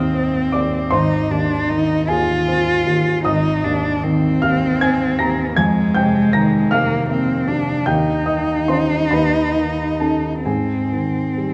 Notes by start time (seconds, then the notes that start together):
Already playing: G#1 D#2 D#3 C4 D#5 F5 D#6 F6
0.14 C4
0.52 D#2 D5 D6
0.91 G#1 D#4 C5 C6
1.31 D#2 D4
1.69 D#3 D#4
2.08 D#2 F4 G#4 G#5
2.48 C4
2.86 D#2
3.25 G#1 D#4 D#5 D#6
3.64 D#2 D4
4.03 D#3 C4
4.42 D#2 F5 F6
4.81 C4 G#5 G#6
5.19 D#2 A#5 A#6
5.56 F2 G#3 G#5 G#6
5.95 C3 G5 G6
6.33 D#3 A#5 A#6
6.71 C3 A#3 F5 F6
7.09 A#3 C4
7.48 C3 D4
7.86 D#2 D#4 G5 G6
8.26 D#3 D#5 D#6
8.68 C#4 F4 C5 C6
9.11 D#2 B4 B5
9.56 D#3
10.00 C#4 D#4 A4 A5
10.45 G#2 C4 G#4 G#5
10.92 D#3
11.38 G3